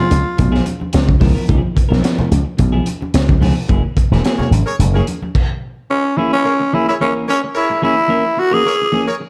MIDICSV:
0, 0, Header, 1, 8, 480
1, 0, Start_track
1, 0, Tempo, 550964
1, 1295, Time_signature, 4, 2, 24, 8
1, 8096, End_track
2, 0, Start_track
2, 0, Title_t, "Horn section"
2, 0, Program_c, 0, 61
2, 3817, Note_on_c, 0, 68, 77
2, 3818, Note_on_c, 0, 73, 86
2, 3822, Note_on_c, 0, 70, 78
2, 3891, Note_off_c, 0, 68, 0
2, 3892, Note_off_c, 0, 73, 0
2, 3894, Note_off_c, 0, 70, 0
2, 4061, Note_on_c, 0, 70, 89
2, 4066, Note_on_c, 0, 68, 89
2, 4067, Note_on_c, 0, 73, 108
2, 4133, Note_off_c, 0, 70, 0
2, 4137, Note_off_c, 0, 68, 0
2, 4137, Note_off_c, 0, 73, 0
2, 4303, Note_on_c, 0, 70, 79
2, 4304, Note_on_c, 0, 73, 92
2, 4306, Note_on_c, 0, 68, 95
2, 4375, Note_off_c, 0, 70, 0
2, 4376, Note_off_c, 0, 73, 0
2, 4377, Note_off_c, 0, 68, 0
2, 5614, Note_on_c, 0, 70, 82
2, 5615, Note_on_c, 0, 68, 75
2, 5615, Note_on_c, 0, 73, 87
2, 5695, Note_off_c, 0, 70, 0
2, 5696, Note_off_c, 0, 68, 0
2, 5696, Note_off_c, 0, 73, 0
2, 5992, Note_on_c, 0, 68, 85
2, 5994, Note_on_c, 0, 70, 80
2, 5999, Note_on_c, 0, 73, 91
2, 6061, Note_off_c, 0, 68, 0
2, 6062, Note_off_c, 0, 70, 0
2, 6066, Note_off_c, 0, 73, 0
2, 6343, Note_on_c, 0, 68, 81
2, 6343, Note_on_c, 0, 73, 107
2, 6346, Note_on_c, 0, 70, 85
2, 6421, Note_off_c, 0, 68, 0
2, 6422, Note_off_c, 0, 73, 0
2, 6423, Note_off_c, 0, 70, 0
2, 6576, Note_on_c, 0, 73, 112
2, 6579, Note_on_c, 0, 68, 105
2, 6579, Note_on_c, 0, 70, 98
2, 6924, Note_off_c, 0, 73, 0
2, 6926, Note_off_c, 0, 68, 0
2, 6926, Note_off_c, 0, 70, 0
2, 7539, Note_on_c, 0, 68, 85
2, 7545, Note_on_c, 0, 70, 86
2, 7546, Note_on_c, 0, 73, 96
2, 7619, Note_off_c, 0, 68, 0
2, 7623, Note_off_c, 0, 70, 0
2, 7624, Note_off_c, 0, 73, 0
2, 7904, Note_on_c, 0, 73, 94
2, 7907, Note_on_c, 0, 68, 77
2, 7910, Note_on_c, 0, 70, 90
2, 7975, Note_off_c, 0, 73, 0
2, 7977, Note_off_c, 0, 68, 0
2, 7980, Note_off_c, 0, 70, 0
2, 8096, End_track
3, 0, Start_track
3, 0, Title_t, "Tenor saxophone"
3, 0, Program_c, 1, 66
3, 0, Note_on_c, 1, 65, 107
3, 778, Note_off_c, 1, 65, 0
3, 5142, Note_on_c, 1, 61, 97
3, 5379, Note_on_c, 1, 64, 85
3, 5392, Note_off_c, 1, 61, 0
3, 5504, Note_off_c, 1, 64, 0
3, 5511, Note_on_c, 1, 61, 90
3, 5872, Note_on_c, 1, 64, 88
3, 5885, Note_off_c, 1, 61, 0
3, 5991, Note_off_c, 1, 64, 0
3, 5999, Note_on_c, 1, 64, 78
3, 6046, Note_off_c, 1, 64, 0
3, 6110, Note_on_c, 1, 61, 85
3, 6215, Note_off_c, 1, 61, 0
3, 6352, Note_on_c, 1, 61, 90
3, 6456, Note_off_c, 1, 61, 0
3, 6587, Note_on_c, 1, 64, 92
3, 6805, Note_off_c, 1, 64, 0
3, 6828, Note_on_c, 1, 64, 97
3, 7307, Note_on_c, 1, 66, 102
3, 7320, Note_off_c, 1, 64, 0
3, 7431, Note_on_c, 1, 68, 116
3, 7444, Note_off_c, 1, 66, 0
3, 7907, Note_off_c, 1, 68, 0
3, 8096, End_track
4, 0, Start_track
4, 0, Title_t, "Clean electric guitar"
4, 0, Program_c, 2, 27
4, 452, Note_on_c, 2, 68, 87
4, 457, Note_on_c, 2, 64, 77
4, 459, Note_on_c, 2, 59, 86
4, 469, Note_on_c, 2, 53, 70
4, 565, Note_off_c, 2, 53, 0
4, 568, Note_off_c, 2, 68, 0
4, 571, Note_off_c, 2, 64, 0
4, 572, Note_off_c, 2, 59, 0
4, 1046, Note_on_c, 2, 53, 61
4, 1051, Note_on_c, 2, 59, 59
4, 1054, Note_on_c, 2, 64, 74
4, 1064, Note_on_c, 2, 70, 68
4, 1149, Note_off_c, 2, 53, 0
4, 1151, Note_off_c, 2, 59, 0
4, 1153, Note_off_c, 2, 64, 0
4, 1157, Note_off_c, 2, 70, 0
4, 1172, Note_on_c, 2, 70, 63
4, 1177, Note_on_c, 2, 64, 50
4, 1184, Note_on_c, 2, 59, 54
4, 1188, Note_on_c, 2, 53, 53
4, 1264, Note_off_c, 2, 70, 0
4, 1267, Note_off_c, 2, 64, 0
4, 1270, Note_off_c, 2, 59, 0
4, 1272, Note_off_c, 2, 53, 0
4, 1290, Note_on_c, 2, 53, 73
4, 1294, Note_on_c, 2, 59, 76
4, 1295, Note_on_c, 2, 64, 86
4, 1304, Note_on_c, 2, 68, 81
4, 1403, Note_off_c, 2, 68, 0
4, 1409, Note_off_c, 2, 64, 0
4, 1411, Note_off_c, 2, 59, 0
4, 1470, Note_off_c, 2, 53, 0
4, 1644, Note_on_c, 2, 70, 71
4, 1653, Note_on_c, 2, 64, 58
4, 1659, Note_on_c, 2, 59, 54
4, 1660, Note_on_c, 2, 53, 57
4, 1740, Note_off_c, 2, 70, 0
4, 1745, Note_off_c, 2, 53, 0
4, 1745, Note_off_c, 2, 64, 0
4, 1748, Note_off_c, 2, 59, 0
4, 1756, Note_on_c, 2, 53, 78
4, 1760, Note_on_c, 2, 59, 98
4, 1767, Note_on_c, 2, 64, 84
4, 1770, Note_on_c, 2, 70, 85
4, 1987, Note_off_c, 2, 53, 0
4, 1989, Note_off_c, 2, 59, 0
4, 1993, Note_off_c, 2, 64, 0
4, 1995, Note_off_c, 2, 70, 0
4, 2373, Note_on_c, 2, 68, 72
4, 2379, Note_on_c, 2, 64, 78
4, 2385, Note_on_c, 2, 59, 58
4, 2389, Note_on_c, 2, 53, 60
4, 2478, Note_off_c, 2, 53, 0
4, 2483, Note_off_c, 2, 59, 0
4, 2489, Note_off_c, 2, 64, 0
4, 2489, Note_off_c, 2, 68, 0
4, 2968, Note_on_c, 2, 53, 77
4, 2975, Note_on_c, 2, 59, 92
4, 2984, Note_on_c, 2, 68, 91
4, 2986, Note_on_c, 2, 64, 83
4, 3094, Note_off_c, 2, 68, 0
4, 3097, Note_off_c, 2, 53, 0
4, 3098, Note_off_c, 2, 64, 0
4, 3100, Note_off_c, 2, 59, 0
4, 3212, Note_on_c, 2, 54, 79
4, 3218, Note_on_c, 2, 58, 80
4, 3223, Note_on_c, 2, 64, 91
4, 3228, Note_on_c, 2, 68, 84
4, 3335, Note_off_c, 2, 68, 0
4, 3339, Note_off_c, 2, 54, 0
4, 3342, Note_off_c, 2, 58, 0
4, 3345, Note_off_c, 2, 64, 0
4, 3592, Note_on_c, 2, 68, 54
4, 3594, Note_on_c, 2, 64, 62
4, 3601, Note_on_c, 2, 58, 53
4, 3604, Note_on_c, 2, 54, 49
4, 3674, Note_off_c, 2, 68, 0
4, 3675, Note_off_c, 2, 64, 0
4, 3679, Note_off_c, 2, 58, 0
4, 3680, Note_off_c, 2, 54, 0
4, 3705, Note_on_c, 2, 54, 91
4, 3713, Note_on_c, 2, 58, 83
4, 3719, Note_on_c, 2, 64, 92
4, 3724, Note_on_c, 2, 68, 98
4, 3922, Note_off_c, 2, 54, 0
4, 3926, Note_off_c, 2, 58, 0
4, 3929, Note_off_c, 2, 64, 0
4, 3932, Note_off_c, 2, 68, 0
4, 4317, Note_on_c, 2, 68, 81
4, 4322, Note_on_c, 2, 64, 68
4, 4326, Note_on_c, 2, 58, 67
4, 4327, Note_on_c, 2, 54, 56
4, 4405, Note_off_c, 2, 54, 0
4, 4411, Note_off_c, 2, 58, 0
4, 4416, Note_off_c, 2, 64, 0
4, 4416, Note_off_c, 2, 68, 0
4, 5376, Note_on_c, 2, 52, 88
4, 5382, Note_on_c, 2, 58, 95
4, 5385, Note_on_c, 2, 61, 100
4, 5392, Note_on_c, 2, 68, 94
4, 5501, Note_off_c, 2, 52, 0
4, 5504, Note_off_c, 2, 58, 0
4, 5505, Note_off_c, 2, 61, 0
4, 5509, Note_off_c, 2, 68, 0
4, 5864, Note_on_c, 2, 52, 77
4, 5871, Note_on_c, 2, 58, 85
4, 5877, Note_on_c, 2, 61, 80
4, 5877, Note_on_c, 2, 68, 84
4, 5985, Note_off_c, 2, 52, 0
4, 5985, Note_off_c, 2, 68, 0
4, 5988, Note_off_c, 2, 58, 0
4, 5991, Note_off_c, 2, 61, 0
4, 6102, Note_on_c, 2, 52, 69
4, 6108, Note_on_c, 2, 58, 71
4, 6114, Note_on_c, 2, 61, 80
4, 6121, Note_on_c, 2, 70, 88
4, 6321, Note_off_c, 2, 52, 0
4, 6323, Note_off_c, 2, 58, 0
4, 6326, Note_off_c, 2, 61, 0
4, 6330, Note_off_c, 2, 70, 0
4, 6814, Note_on_c, 2, 52, 79
4, 6821, Note_on_c, 2, 58, 93
4, 6823, Note_on_c, 2, 61, 100
4, 6825, Note_on_c, 2, 68, 101
4, 6928, Note_off_c, 2, 68, 0
4, 6936, Note_off_c, 2, 61, 0
4, 6940, Note_off_c, 2, 52, 0
4, 6943, Note_off_c, 2, 58, 0
4, 7037, Note_on_c, 2, 52, 72
4, 7048, Note_on_c, 2, 58, 83
4, 7049, Note_on_c, 2, 61, 76
4, 7057, Note_on_c, 2, 70, 82
4, 7172, Note_off_c, 2, 52, 0
4, 7177, Note_off_c, 2, 58, 0
4, 7178, Note_off_c, 2, 61, 0
4, 7181, Note_off_c, 2, 70, 0
4, 7417, Note_on_c, 2, 70, 71
4, 7423, Note_on_c, 2, 61, 70
4, 7431, Note_on_c, 2, 58, 65
4, 7434, Note_on_c, 2, 52, 63
4, 7507, Note_off_c, 2, 70, 0
4, 7510, Note_off_c, 2, 61, 0
4, 7514, Note_off_c, 2, 58, 0
4, 7515, Note_off_c, 2, 52, 0
4, 7772, Note_on_c, 2, 52, 79
4, 7774, Note_on_c, 2, 58, 75
4, 7786, Note_on_c, 2, 61, 90
4, 7789, Note_on_c, 2, 68, 85
4, 7896, Note_off_c, 2, 68, 0
4, 7899, Note_off_c, 2, 52, 0
4, 7900, Note_off_c, 2, 58, 0
4, 7900, Note_off_c, 2, 61, 0
4, 8096, End_track
5, 0, Start_track
5, 0, Title_t, "Slap bass"
5, 0, Program_c, 3, 36
5, 95, Note_on_c, 3, 37, 76
5, 192, Note_off_c, 3, 37, 0
5, 339, Note_on_c, 3, 35, 100
5, 520, Note_off_c, 3, 35, 0
5, 819, Note_on_c, 3, 37, 84
5, 1000, Note_off_c, 3, 37, 0
5, 1058, Note_on_c, 3, 37, 89
5, 1154, Note_off_c, 3, 37, 0
5, 1299, Note_on_c, 3, 37, 111
5, 1394, Note_off_c, 3, 37, 0
5, 1667, Note_on_c, 3, 35, 88
5, 1751, Note_off_c, 3, 35, 0
5, 2016, Note_on_c, 3, 37, 85
5, 2112, Note_off_c, 3, 37, 0
5, 2256, Note_on_c, 3, 35, 99
5, 2438, Note_off_c, 3, 35, 0
5, 2733, Note_on_c, 3, 37, 79
5, 2917, Note_off_c, 3, 37, 0
5, 2972, Note_on_c, 3, 37, 91
5, 3070, Note_off_c, 3, 37, 0
5, 3218, Note_on_c, 3, 30, 114
5, 3314, Note_off_c, 3, 30, 0
5, 3583, Note_on_c, 3, 28, 92
5, 3668, Note_off_c, 3, 28, 0
5, 3927, Note_on_c, 3, 32, 84
5, 4027, Note_off_c, 3, 32, 0
5, 4173, Note_on_c, 3, 30, 97
5, 4357, Note_off_c, 3, 30, 0
5, 8096, End_track
6, 0, Start_track
6, 0, Title_t, "Muted clean electric guitar strokes"
6, 88, Note_on_c, 9, 29, 33
6, 175, Note_off_c, 9, 29, 0
6, 210, Note_on_c, 9, 29, 49
6, 297, Note_off_c, 9, 29, 0
6, 324, Note_on_c, 9, 29, 31
6, 411, Note_off_c, 9, 29, 0
6, 576, Note_on_c, 9, 29, 47
6, 663, Note_off_c, 9, 29, 0
6, 697, Note_on_c, 9, 29, 51
6, 784, Note_off_c, 9, 29, 0
6, 807, Note_on_c, 9, 29, 36
6, 894, Note_off_c, 9, 29, 0
6, 932, Note_on_c, 9, 29, 53
6, 1019, Note_off_c, 9, 29, 0
6, 1414, Note_on_c, 9, 29, 45
6, 1501, Note_off_c, 9, 29, 0
6, 1525, Note_on_c, 9, 29, 37
6, 1612, Note_off_c, 9, 29, 0
6, 2000, Note_on_c, 9, 29, 38
6, 2087, Note_off_c, 9, 29, 0
6, 2132, Note_on_c, 9, 29, 36
6, 2219, Note_off_c, 9, 29, 0
6, 2242, Note_on_c, 9, 29, 36
6, 2329, Note_off_c, 9, 29, 0
6, 2489, Note_on_c, 9, 29, 42
6, 2576, Note_off_c, 9, 29, 0
6, 2620, Note_on_c, 9, 29, 44
6, 2707, Note_off_c, 9, 29, 0
6, 2861, Note_on_c, 9, 29, 50
6, 2948, Note_off_c, 9, 29, 0
6, 3104, Note_on_c, 9, 29, 36
6, 3191, Note_off_c, 9, 29, 0
6, 3346, Note_on_c, 9, 29, 50
6, 3433, Note_off_c, 9, 29, 0
6, 3455, Note_on_c, 9, 29, 47
6, 3542, Note_off_c, 9, 29, 0
6, 4082, Note_on_c, 9, 29, 47
6, 4169, Note_off_c, 9, 29, 0
6, 4199, Note_on_c, 9, 29, 35
6, 4286, Note_off_c, 9, 29, 0
6, 4415, Note_on_c, 9, 29, 40
6, 4502, Note_off_c, 9, 29, 0
6, 4554, Note_on_c, 9, 29, 41
6, 4641, Note_off_c, 9, 29, 0
6, 5615, Note_on_c, 9, 29, 35
6, 5702, Note_off_c, 9, 29, 0
6, 5747, Note_on_c, 9, 29, 56
6, 5834, Note_off_c, 9, 29, 0
6, 5995, Note_on_c, 9, 29, 41
6, 6082, Note_off_c, 9, 29, 0
6, 6349, Note_on_c, 9, 29, 46
6, 6436, Note_off_c, 9, 29, 0
6, 6480, Note_on_c, 9, 29, 46
6, 6568, Note_off_c, 9, 29, 0
6, 6708, Note_on_c, 9, 29, 55
6, 6795, Note_off_c, 9, 29, 0
6, 6939, Note_on_c, 9, 29, 54
6, 7026, Note_off_c, 9, 29, 0
6, 7290, Note_on_c, 9, 29, 38
6, 7377, Note_off_c, 9, 29, 0
6, 7535, Note_on_c, 9, 29, 45
6, 7622, Note_off_c, 9, 29, 0
6, 7678, Note_on_c, 9, 29, 48
6, 7765, Note_off_c, 9, 29, 0
6, 7906, Note_on_c, 9, 29, 41
6, 7994, Note_off_c, 9, 29, 0
6, 8018, Note_on_c, 9, 29, 35
6, 8096, Note_off_c, 9, 29, 0
6, 8096, End_track
7, 0, Start_track
7, 0, Title_t, "Muted slap bass strokes"
7, 1912, Note_on_c, 9, 29, 43
7, 1999, Note_off_c, 9, 29, 0
7, 3819, Note_on_c, 9, 29, 39
7, 3906, Note_off_c, 9, 29, 0
7, 8096, End_track
8, 0, Start_track
8, 0, Title_t, "Drums"
8, 95, Note_on_c, 9, 42, 82
8, 107, Note_on_c, 9, 62, 38
8, 107, Note_on_c, 9, 63, 79
8, 182, Note_off_c, 9, 42, 0
8, 194, Note_off_c, 9, 62, 0
8, 194, Note_off_c, 9, 63, 0
8, 335, Note_on_c, 9, 42, 95
8, 339, Note_on_c, 9, 36, 79
8, 339, Note_on_c, 9, 64, 71
8, 422, Note_off_c, 9, 42, 0
8, 426, Note_off_c, 9, 36, 0
8, 426, Note_off_c, 9, 64, 0
8, 476, Note_on_c, 9, 38, 32
8, 563, Note_off_c, 9, 38, 0
8, 574, Note_on_c, 9, 42, 59
8, 580, Note_on_c, 9, 62, 33
8, 580, Note_on_c, 9, 63, 75
8, 661, Note_off_c, 9, 42, 0
8, 667, Note_off_c, 9, 62, 0
8, 667, Note_off_c, 9, 63, 0
8, 709, Note_on_c, 9, 63, 66
8, 796, Note_off_c, 9, 63, 0
8, 808, Note_on_c, 9, 42, 98
8, 820, Note_on_c, 9, 62, 32
8, 820, Note_on_c, 9, 63, 48
8, 822, Note_on_c, 9, 38, 106
8, 896, Note_off_c, 9, 42, 0
8, 907, Note_off_c, 9, 62, 0
8, 907, Note_off_c, 9, 63, 0
8, 909, Note_off_c, 9, 38, 0
8, 944, Note_on_c, 9, 63, 79
8, 946, Note_on_c, 9, 36, 86
8, 1031, Note_off_c, 9, 63, 0
8, 1033, Note_off_c, 9, 36, 0
8, 1051, Note_on_c, 9, 64, 84
8, 1055, Note_on_c, 9, 36, 97
8, 1061, Note_on_c, 9, 46, 77
8, 1068, Note_on_c, 9, 38, 32
8, 1138, Note_off_c, 9, 64, 0
8, 1142, Note_off_c, 9, 36, 0
8, 1148, Note_off_c, 9, 46, 0
8, 1155, Note_off_c, 9, 38, 0
8, 1298, Note_on_c, 9, 42, 83
8, 1299, Note_on_c, 9, 36, 100
8, 1307, Note_on_c, 9, 62, 44
8, 1385, Note_off_c, 9, 42, 0
8, 1386, Note_off_c, 9, 36, 0
8, 1394, Note_off_c, 9, 62, 0
8, 1539, Note_on_c, 9, 36, 94
8, 1541, Note_on_c, 9, 62, 36
8, 1545, Note_on_c, 9, 42, 77
8, 1626, Note_off_c, 9, 36, 0
8, 1628, Note_off_c, 9, 62, 0
8, 1632, Note_off_c, 9, 42, 0
8, 1660, Note_on_c, 9, 63, 72
8, 1678, Note_on_c, 9, 38, 37
8, 1747, Note_off_c, 9, 63, 0
8, 1765, Note_off_c, 9, 38, 0
8, 1777, Note_on_c, 9, 42, 89
8, 1778, Note_on_c, 9, 62, 28
8, 1787, Note_on_c, 9, 38, 103
8, 1864, Note_off_c, 9, 42, 0
8, 1865, Note_off_c, 9, 62, 0
8, 1874, Note_off_c, 9, 38, 0
8, 1904, Note_on_c, 9, 64, 95
8, 1991, Note_off_c, 9, 64, 0
8, 2019, Note_on_c, 9, 42, 78
8, 2028, Note_on_c, 9, 62, 34
8, 2028, Note_on_c, 9, 63, 79
8, 2106, Note_off_c, 9, 42, 0
8, 2115, Note_off_c, 9, 62, 0
8, 2115, Note_off_c, 9, 63, 0
8, 2252, Note_on_c, 9, 42, 89
8, 2258, Note_on_c, 9, 36, 89
8, 2262, Note_on_c, 9, 62, 34
8, 2262, Note_on_c, 9, 64, 71
8, 2339, Note_off_c, 9, 42, 0
8, 2345, Note_off_c, 9, 36, 0
8, 2349, Note_off_c, 9, 62, 0
8, 2349, Note_off_c, 9, 64, 0
8, 2492, Note_on_c, 9, 42, 73
8, 2501, Note_on_c, 9, 63, 66
8, 2579, Note_off_c, 9, 42, 0
8, 2589, Note_off_c, 9, 63, 0
8, 2633, Note_on_c, 9, 63, 74
8, 2721, Note_off_c, 9, 63, 0
8, 2735, Note_on_c, 9, 42, 98
8, 2748, Note_on_c, 9, 38, 112
8, 2748, Note_on_c, 9, 63, 43
8, 2822, Note_off_c, 9, 42, 0
8, 2835, Note_off_c, 9, 38, 0
8, 2835, Note_off_c, 9, 63, 0
8, 2867, Note_on_c, 9, 36, 88
8, 2873, Note_on_c, 9, 63, 87
8, 2954, Note_off_c, 9, 36, 0
8, 2961, Note_off_c, 9, 63, 0
8, 2978, Note_on_c, 9, 62, 35
8, 2978, Note_on_c, 9, 64, 81
8, 2985, Note_on_c, 9, 46, 70
8, 2992, Note_on_c, 9, 38, 31
8, 3065, Note_off_c, 9, 62, 0
8, 3065, Note_off_c, 9, 64, 0
8, 3072, Note_off_c, 9, 46, 0
8, 3079, Note_off_c, 9, 38, 0
8, 3218, Note_on_c, 9, 36, 125
8, 3222, Note_on_c, 9, 42, 83
8, 3238, Note_on_c, 9, 62, 41
8, 3305, Note_off_c, 9, 36, 0
8, 3309, Note_off_c, 9, 42, 0
8, 3325, Note_off_c, 9, 62, 0
8, 3456, Note_on_c, 9, 36, 104
8, 3462, Note_on_c, 9, 42, 84
8, 3543, Note_off_c, 9, 36, 0
8, 3549, Note_off_c, 9, 42, 0
8, 3588, Note_on_c, 9, 63, 73
8, 3593, Note_on_c, 9, 38, 37
8, 3675, Note_off_c, 9, 63, 0
8, 3680, Note_off_c, 9, 38, 0
8, 3698, Note_on_c, 9, 42, 86
8, 3709, Note_on_c, 9, 38, 104
8, 3785, Note_off_c, 9, 42, 0
8, 3796, Note_off_c, 9, 38, 0
8, 3829, Note_on_c, 9, 64, 84
8, 3916, Note_off_c, 9, 64, 0
8, 3941, Note_on_c, 9, 42, 80
8, 3947, Note_on_c, 9, 62, 36
8, 3947, Note_on_c, 9, 63, 80
8, 4028, Note_off_c, 9, 42, 0
8, 4034, Note_off_c, 9, 62, 0
8, 4034, Note_off_c, 9, 63, 0
8, 4181, Note_on_c, 9, 42, 101
8, 4182, Note_on_c, 9, 62, 36
8, 4182, Note_on_c, 9, 64, 80
8, 4268, Note_off_c, 9, 42, 0
8, 4269, Note_off_c, 9, 62, 0
8, 4269, Note_off_c, 9, 64, 0
8, 4419, Note_on_c, 9, 42, 65
8, 4424, Note_on_c, 9, 63, 73
8, 4506, Note_off_c, 9, 42, 0
8, 4511, Note_off_c, 9, 63, 0
8, 4551, Note_on_c, 9, 63, 73
8, 4638, Note_off_c, 9, 63, 0
8, 4661, Note_on_c, 9, 36, 97
8, 4662, Note_on_c, 9, 49, 83
8, 4748, Note_off_c, 9, 36, 0
8, 4750, Note_off_c, 9, 49, 0
8, 8096, End_track
0, 0, End_of_file